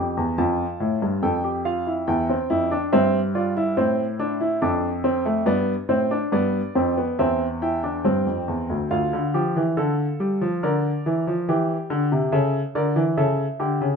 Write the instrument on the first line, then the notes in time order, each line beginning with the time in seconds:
grand piano
Already playing: F2 G4 A#5
0.17 E2
0.38 F2 F4 A5
0.80 A2
1.02 G2
1.22 F2 A4 G5
1.44 G4
1.65 F4 F5
1.87 E4
2.07 E2 E4 G5
2.29 C4
2.50 F2 E4
2.71 D4
2.93 G2 C4 E5
3.35 F4 D5
3.57 E4
3.77 A2 C4 C5
4.20 D4
4.41 E4
4.62 F2 D4 A4
5.04 C4
5.25 A3
5.46 G2 B3 D5
5.89 A2 C4 C5
6.11 D4
6.32 G2 B3 D5
6.75 F2 C4
6.98 B3
7.19 E2 C4 E5
7.62 E4 G5
7.83 D4
8.05 G2 C4
8.27 F2
8.48 E2
8.70 D2
8.91 D2 F4 F5
9.13 D3
9.34 F3 G4
9.56 E3
9.77 D3 A4
10.20 G3
10.41 F3
10.63 D3 A#4 D5
11.06 E3
11.27 F3
11.49 E3 G4
11.90 D3
12.12 C3
12.32 C#3 A4 E5
12.75 D3 A#4 D5
12.96 E3
13.17 C#3 A4 E5
13.60 D3 G4
13.81 C#3